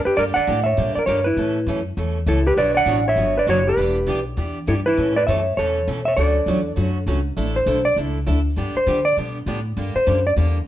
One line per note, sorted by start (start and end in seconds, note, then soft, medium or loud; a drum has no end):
0.05 0.17 G4 medium
0.05 0.17 B4 medium
0.05 muted upright bass stroke soft
0.16 0.35 G2 medium
0.16 0.37 D3 medium
0.16 0.37 G3 medium
0.16 0.38 A#3 medium
0.16 0.38 D4 medium
0.16 0.38 G4 medium
0.16 0.24 A#4 medium
0.16 0.22 D5 loud
0.34 0.63 D5 medium
0.34 0.66 F#5 loud
0.34 muted upright bass stroke soft
0.47 0.76 A2 medium
0.47 0.59 D3 medium
0.47 0.59 G3 medium
0.47 0.59 A#3 medium
0.47 0.59 D4 medium
0.47 0.59 G4 medium
0.64 0.94 C#5 medium
0.64 0.93 E5 medium
0.77 0.95 A#2 medium
0.77 0.98 D3 medium
0.77 0.98 G3 medium
0.77 0.98 A#3 medium
0.77 0.98 D4 medium
0.77 0.98 G4 medium
0.95 1.07 A#4 medium
0.95 1.06 D5 medium
0.95 muted upright bass stroke soft
1.06 1.36 G2 medium
1.06 1.19 D3 medium
1.06 1.19 G3 medium
1.06 1.19 A#3 medium
1.06 1.19 D4 medium
1.06 1.19 G4 medium
1.06 1.24 A#4 medium
1.06 1.26 C#5 medium
1.24 1.82 E4 medium
1.24 1.81 B4 medium
1.37 1.66 A2 medium
1.37 1.58 B2 medium
1.37 1.58 E3 medium
1.37 1.58 A3 medium
1.37 1.58 C#4 medium
1.37 1.58 A4 medium
1.67 1.96 F#2 medium
1.67 1.79 B2 medium
1.67 1.79 E3 medium
1.67 1.79 A3 medium
1.67 1.79 C#4 medium
1.67 1.79 A4 medium
1.97 2.26 E2 medium
1.97 2.18 B2 medium
1.97 2.18 E3 medium
1.97 2.18 A3 medium
1.97 2.18 C#4 medium
1.97 2.18 A4 medium
2.26 2.56 C#2 medium
2.26 2.38 B2 medium
2.26 2.38 E3 medium
2.26 2.38 A3 medium
2.26 2.39 C#4 medium
2.26 2.45 E4 medium
2.26 2.39 A4 medium
2.26 2.46 A4 medium
2.47 2.57 G4 medium
2.47 2.56 B4 medium
2.57 2.85 B1 medium
2.57 2.77 B2 medium
2.57 2.78 F#3 medium
2.57 2.78 B3 medium
2.57 2.78 D4 medium
2.57 2.78 F#4 medium
2.57 2.75 B4 medium
2.57 2.78 C#5 medium
2.57 2.73 D5 loud
2.75 3.03 D5 medium
2.75 3.07 F#5 loud
2.86 3.15 A1 medium
2.86 2.98 B2 medium
2.86 2.99 F#3 medium
2.86 2.98 B3 medium
2.86 2.99 D4 medium
2.86 2.99 F#4 medium
2.86 2.99 C#5 medium
3.08 3.35 C#5 medium
3.08 3.38 E5 loud
3.16 3.46 G1 medium
3.16 3.37 B2 medium
3.16 3.37 F#3 medium
3.16 3.38 B3 medium
3.16 3.38 D4 medium
3.16 3.38 F#4 medium
3.16 3.38 C#5 medium
3.37 3.47 B4 medium
3.37 3.49 D5 medium
3.47 3.76 F#1 medium
3.47 3.58 B2 medium
3.47 3.59 F#3 medium
3.47 3.59 B3 medium
3.47 3.59 D4 medium
3.47 3.59 F#4 medium
3.47 3.66 F#4 medium
3.47 3.59 C#5 medium
3.47 3.68 C#5 medium
3.67 4.23 G4 medium
3.67 4.23 B4 medium
3.77 4.06 E1 medium
3.77 3.98 E3 medium
3.77 3.98 B3 medium
3.77 3.98 D4 medium
3.77 3.98 G4 medium
4.07 4.36 B1 medium
4.07 4.18 E3 medium
4.07 4.18 B3 medium
4.07 4.19 D4 medium
4.07 4.19 G4 medium
4.37 4.66 E2 medium
4.37 4.57 E3 medium
4.37 4.58 B3 medium
4.37 4.58 D4 medium
4.37 4.58 G4 medium
4.67 4.96 G2 medium
4.67 4.79 E3 medium
4.67 4.79 B3 medium
4.67 4.79 D4 medium
4.67 4.74 E4 medium
4.67 4.79 G4 medium
4.67 4.73 A4 medium
4.86 5.15 E4 medium
4.86 5.16 B4 loud
4.97 5.27 A2 medium
4.97 5.18 B2 medium
4.97 5.18 E3 medium
4.97 5.18 A3 medium
4.97 5.18 C#4 medium
4.97 5.18 A4 medium
5.16 5.27 B4 medium
5.16 5.26 D5 loud
5.27 5.57 F#2 medium
5.27 5.39 B2 medium
5.27 5.39 E3 medium
5.27 5.39 A3 medium
5.27 5.39 C#4 medium
5.27 5.40 A4 medium
5.27 5.56 C#5 medium
5.27 5.58 E5 loud
5.57 5.86 E2 medium
5.57 5.78 B2 medium
5.57 5.78 E3 medium
5.57 5.78 A3 medium
5.57 5.79 C#4 medium
5.57 6.03 A4 medium
5.57 5.79 A4 medium
5.57 6.03 C#5 loud
5.88 6.16 B2 medium
5.88 5.99 B2 medium
5.88 5.99 E3 medium
5.88 5.99 A3 medium
5.88 5.99 C#4 medium
5.88 5.99 A4 medium
6.05 6.16 C#5 medium
6.05 6.16 E5 loud
6.17 6.46 D2 medium
6.17 6.37 D3 medium
6.17 6.37 F#3 medium
6.17 6.38 A3 medium
6.17 6.38 C#4 medium
6.17 6.38 F#4 medium
6.17 7.04 A4 medium
6.17 6.75 D5 medium
6.46 6.76 E2 medium
6.46 6.58 D3 medium
6.46 6.59 F#3 medium
6.46 6.59 A3 medium
6.46 6.59 C#4 medium
6.46 6.59 F#4 medium
6.75 7.06 F#2 medium
6.75 6.97 D3 medium
6.75 6.97 F#3 medium
6.75 6.97 A3 medium
6.75 6.97 C#4 medium
6.75 6.97 F#4 medium
6.75 7.03 C#5 medium
7.06 7.36 C#2 medium
7.06 7.18 D3 medium
7.06 7.18 F#3 medium
7.06 7.19 A3 medium
7.06 7.19 C#4 medium
7.06 7.19 F#4 medium
7.37 7.66 A1 medium
7.37 7.57 D3 medium
7.37 7.57 A3 medium
7.37 7.57 D4 medium
7.37 7.58 E4 medium
7.37 7.57 A4 medium
7.56 7.84 C5 medium
7.66 7.96 B1 loud
7.66 7.78 D3 medium
7.66 7.78 A3 medium
7.66 7.78 D4 medium
7.66 7.79 E4 medium
7.66 7.79 A4 medium
7.85 7.96 D5 loud
7.96 8.26 C#2 medium
7.96 8.17 D3 medium
7.96 8.17 A3 medium
7.96 8.18 D4 medium
7.96 8.18 E4 medium
7.96 8.18 A4 medium
8.26 8.56 D2 medium
8.26 8.38 D3 medium
8.26 8.38 A3 medium
8.26 8.38 D4 medium
8.26 8.38 E4 medium
8.26 8.39 A4 medium
8.56 8.74 G2 medium
8.56 8.77 D3 medium
8.56 8.77 G3 medium
8.56 8.78 B3 medium
8.56 8.78 D4 medium
8.56 8.78 G4 medium
8.76 9.04 C5 medium
8.76 muted upright bass stroke soft
8.87 9.16 D3 loud
8.87 8.98 D3 medium
8.87 8.98 G3 medium
8.87 8.98 B3 medium
8.87 8.99 D4 medium
8.87 8.99 G4 medium
9.05 9.16 D5 loud
9.17 9.46 B2 medium
9.17 9.38 D3 medium
9.17 9.38 G3 medium
9.17 9.38 B3 medium
9.17 9.38 D4 medium
9.17 9.38 G4 medium
9.46 9.76 A2 medium
9.46 9.58 D3 medium
9.46 9.58 G3 medium
9.46 9.58 B3 medium
9.46 9.59 D4 medium
9.46 9.59 G4 medium
9.77 9.94 G2 medium
9.77 9.97 D3 medium
9.77 9.97 G3 medium
9.77 9.97 A#3 medium
9.77 9.98 D4 medium
9.77 9.98 G4 medium
9.95 10.24 C5 medium
9.95 muted upright bass stroke soft
10.06 10.36 F#2 loud
10.06 10.18 D3 medium
10.06 10.18 G3 medium
10.06 10.18 A#3 medium
10.06 10.19 D4 medium
10.06 10.19 G4 medium
10.27 10.33 D5 medium
10.36 10.66 E2 medium
10.36 10.57 D3 medium
10.36 10.57 G3 medium
10.36 10.57 A#3 medium
10.36 10.57 D4 medium
10.36 10.57 G4 medium